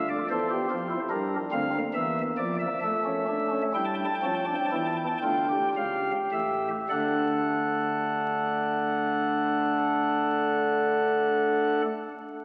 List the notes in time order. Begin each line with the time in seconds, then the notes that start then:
Already playing: D2 D3 F4
0.10 D5
0.30 E2 E3 A4 C5
0.50 G4
0.71 F2 F3 F4
0.91 E4
1.10 G2 G3 D4 A#4
1.52 D2 D3 C4 F5
1.73 A#3
1.94 E2 E3 E5
2.38 F2 F3 D5
2.59 E5
2.82 A3 E5
3.04 C#4
3.28 D4
3.51 C#4
3.74 G2 G3 E4 G5
3.85 A5
3.94 G5
4.05 A5
4.14 G5
4.23 F2 F3 C#4 A5
4.35 G5
4.45 D4 A5
4.54 G5
4.65 A5
4.72 E2 E3 E4 G5
4.85 A5
4.96 G5
5.07 A5
5.17 G5
5.23 D2 D3 F4
5.50 G4
5.76 C#2 C#3 F5
6.32 A1 A2 E5
6.89 D2 D3 A3 D4 A4 F#5